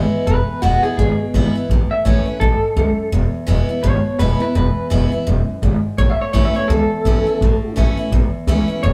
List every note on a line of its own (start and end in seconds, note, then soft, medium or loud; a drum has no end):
0.00 0.24 B2 medium
0.00 0.25 E3 medium
0.00 0.25 G#3 medium
0.00 0.26 B3 medium
0.00 0.26 E4 loud
0.13 muted upright bass stroke medium
0.27 0.40 E1 medium
0.27 0.96 E2 medium
0.27 0.62 B4 loud
0.48 muted upright bass stroke medium
0.62 0.76 E1 medium
0.62 0.83 E3 medium
0.62 0.83 G#3 medium
0.62 0.83 B3 loud
0.62 0.82 E4 loud
0.62 0.82 F#4 medium
0.83 0.98 B3 soft
0.83 0.98 E4 medium
0.83 0.96 G#4 medium
0.83 muted upright bass stroke medium
0.97 1.11 G#1 loud
0.97 1.67 B2 medium
0.97 1.18 G#4 medium
1.19 muted upright bass stroke medium
1.34 1.47 G#1 loud
1.34 1.54 E3 medium
1.34 1.55 G#3 medium
1.34 1.55 B3 medium
1.34 1.54 E4 loud
1.55 1.70 B3 medium
1.55 1.69 E4 medium
1.55 muted upright bass stroke medium
1.69 1.82 A1 medium
1.69 2.39 A2 medium
1.91 2.05 E5 loud
1.91 muted upright bass stroke medium
2.05 2.18 A1 medium
2.05 2.26 E3 medium
2.05 2.26 A3 medium
2.05 2.26 C#4 medium
2.05 2.24 E4 loud
2.05 2.26 C#5 loud
2.26 2.41 C#4 soft
2.26 2.40 E4 medium
2.26 2.40 B4 medium
2.26 muted upright bass stroke medium
2.40 2.54 A1 loud
2.40 2.75 G#2 medium
2.40 3.10 A4 medium
2.62 muted upright bass stroke medium
2.76 2.90 C#2 loud
2.76 3.11 F#2 medium
2.98 muted upright bass stroke medium
3.12 3.25 E1 medium
3.12 3.81 E2 medium
3.34 muted upright bass stroke medium
3.47 3.61 E1 loud
3.47 3.68 E3 medium
3.47 3.68 G#3 loud
3.47 3.69 B3 medium
3.47 3.68 E4 loud
3.69 3.84 B3 medium
3.69 3.83 E4 medium
3.69 muted upright bass stroke medium
3.83 3.97 G#1 loud
3.83 4.52 B2 medium
3.83 4.18 C#5 medium
4.05 muted upright bass stroke medium
4.19 4.32 E1 loud
4.19 4.40 E3 medium
4.19 4.40 G#3 loud
4.19 4.40 B3 loud
4.19 4.39 E4 loud
4.19 4.40 B4 medium
4.40 4.55 B3 soft
4.40 4.54 E4 medium
4.40 4.55 B4 medium
4.40 muted upright bass stroke medium
4.55 4.68 E1 medium
4.55 5.24 E2 medium
4.55 5.60 B4 loud
4.77 muted upright bass stroke medium
4.90 5.04 E1 loud
4.90 5.11 E3 medium
4.90 5.11 G#3 loud
4.90 5.12 B3 medium
4.90 5.11 E4 loud
5.12 5.27 B3 medium
5.12 5.26 E4 medium
5.12 muted upright bass stroke medium
5.27 5.40 E1 medium
5.27 5.61 F#2 medium
5.49 muted upright bass stroke medium
5.62 5.75 G#1 loud
5.62 5.97 G#2 medium
5.84 muted upright bass stroke medium
5.98 6.11 A1 medium
5.98 6.67 A2 medium
5.98 6.10 C#5 loud
6.10 6.21 E5 medium
6.19 6.32 C#5 medium
6.19 muted upright bass stroke medium
6.33 6.47 A1 medium
6.33 6.54 E3 medium
6.33 6.54 A3 loud
6.33 6.54 C#4 loud
6.33 6.53 E4 loud
6.33 6.45 C#5 medium
6.45 6.56 E5 medium
6.55 6.70 C#4 soft
6.55 6.69 E4 medium
6.55 6.68 C#5 loud
6.55 muted upright bass stroke medium
6.68 6.82 C#2 loud
6.68 7.38 E2 medium
6.68 7.72 A4 loud
6.90 muted upright bass stroke medium
7.05 7.18 A1 loud
7.05 7.25 E3 medium
7.05 7.26 A3 medium
7.05 7.26 C#4 loud
7.05 7.25 E4 medium
7.26 7.41 C#4 soft
7.26 7.40 E4 medium
7.26 muted upright bass stroke medium
7.41 7.54 A1 medium
7.41 8.10 A2 medium
7.62 muted upright bass stroke medium
7.76 7.90 A1 loud
7.76 7.96 E3 medium
7.76 7.97 A3 medium
7.76 7.97 C#4 medium
7.76 7.96 E4 loud
7.97 8.12 C#4 medium
7.97 8.11 E4 medium
7.97 muted upright bass stroke medium
8.12 8.25 A1 loud
8.12 8.81 E2 medium
8.33 muted upright bass stroke medium
8.47 8.60 C#2 loud
8.47 8.68 E3 medium
8.47 8.68 A3 medium
8.47 8.68 C#4 loud
8.47 8.67 E4 loud
8.68 8.83 C#4 medium
8.68 8.82 E4 medium
8.83 8.93 E1 loud
8.83 8.93 E2 medium
8.83 8.93 C#5 loud